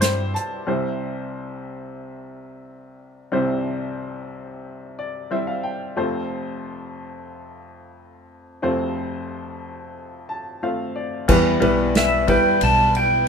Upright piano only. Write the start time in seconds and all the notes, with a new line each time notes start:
Already playing: C2 C3 G3 C4 E4 B4
0.01 C5
0.34 A5
0.67 C2 C3 G3 C4 E4 C5
3.32 C2 C3 G3 C4 E4 C5
4.99 D5
5.31 G3 C4 E4 C5 E5
5.47 F5
5.63 G5
5.96 F1 F2 A3 C4 F4 C5
8.62 F1 F2 A3 C4 F4 C5
10.29 A5
10.63 A3 C4 F4 C5 F5
10.96 D5
11.28 E2 E3 G3 B3 E4 B4
11.60 G3 B3 E4 B4
12.28 G3 B3 E4 B4